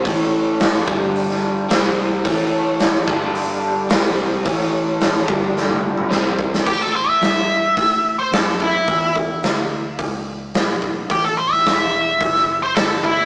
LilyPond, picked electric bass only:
\new Staff \with { instrumentName = "Picked electric bass" } { \clef bass \time 4/4 \key g \lydian \tempo 4 = 108 a,,4. g,,4. c,4 | a,,4. g,,4. c,4 | a,,4. g,,4. c,4 | a,4 g,4 a,4 fis,4 |
e,4 d,4 cis,4 b,,4 | a,,4 e,,4 fis,,4 g,,4 | }